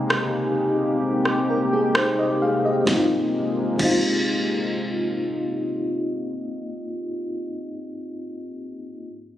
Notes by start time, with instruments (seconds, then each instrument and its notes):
Already playing: fm electric piano C3 A#3 C4 D#4 G4, ambient pad C3 G#3 A#3 G4
0.10 cross-stick
1.25 cross-stick
1.50 fm electric piano A#4
1.73 fm electric piano C4 G#4
1.95 fm electric piano D#4 C5, cross-stick
2.19 fm electric piano G4 D#5
2.42 fm electric piano G#4 F5
2.65 fm electric piano G4 D#5
2.84 fm electric piano G#2 A#3, ambient pad C3 G#3 A#3 F4, kick, snare
2.88 fm electric piano C4 D#4
2.93 fm electric piano F4
3.76 fm electric piano G#2 A#3, kick, crash
3.80 fm electric piano C4 D#4
3.85 fm electric piano F4